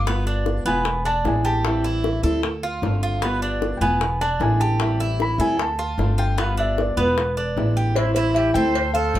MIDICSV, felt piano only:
0, 0, Header, 1, 2, 480
1, 0, Start_track
1, 0, Key_signature, 0, "minor"
1, 0, Tempo, 394737
1, 85, Time_signature, 4, 2, 24, 8
1, 11180, End_track
2, 0, Start_track
2, 0, Title_t, "Felt piano"
2, 0, Program_c, 0, 0
2, 820, Note_on_c, 0, 80, 89
2, 1258, Note_off_c, 0, 80, 0
2, 1292, Note_on_c, 0, 81, 108
2, 1520, Note_off_c, 0, 81, 0
2, 1547, Note_on_c, 0, 80, 77
2, 1768, Note_off_c, 0, 80, 0
2, 1768, Note_on_c, 0, 81, 100
2, 2211, Note_off_c, 0, 81, 0
2, 4587, Note_on_c, 0, 79, 62
2, 4620, Note_off_c, 0, 79, 0
2, 4644, Note_on_c, 0, 80, 92
2, 5088, Note_off_c, 0, 80, 0
2, 5123, Note_on_c, 0, 81, 106
2, 5354, Note_off_c, 0, 81, 0
2, 5375, Note_on_c, 0, 80, 90
2, 5596, Note_on_c, 0, 81, 90
2, 5600, Note_off_c, 0, 80, 0
2, 6044, Note_off_c, 0, 81, 0
2, 6345, Note_on_c, 0, 83, 84
2, 6565, Note_off_c, 0, 83, 0
2, 6575, Note_on_c, 0, 80, 93
2, 6757, Note_off_c, 0, 80, 0
2, 6775, Note_on_c, 0, 80, 70
2, 6803, Note_off_c, 0, 80, 0
2, 6831, Note_on_c, 0, 81, 97
2, 7486, Note_off_c, 0, 81, 0
2, 7529, Note_on_c, 0, 79, 87
2, 7757, Note_off_c, 0, 79, 0
2, 7788, Note_on_c, 0, 77, 78
2, 8007, Note_off_c, 0, 77, 0
2, 8016, Note_on_c, 0, 76, 93
2, 8241, Note_off_c, 0, 76, 0
2, 8274, Note_on_c, 0, 74, 80
2, 8490, Note_off_c, 0, 74, 0
2, 8499, Note_on_c, 0, 71, 83
2, 9522, Note_off_c, 0, 71, 0
2, 9673, Note_on_c, 0, 72, 95
2, 9888, Note_off_c, 0, 72, 0
2, 9906, Note_on_c, 0, 72, 88
2, 10145, Note_on_c, 0, 76, 98
2, 10161, Note_off_c, 0, 72, 0
2, 10376, Note_off_c, 0, 76, 0
2, 10386, Note_on_c, 0, 79, 108
2, 10840, Note_off_c, 0, 79, 0
2, 10867, Note_on_c, 0, 77, 99
2, 11180, Note_off_c, 0, 77, 0
2, 11180, End_track
0, 0, End_of_file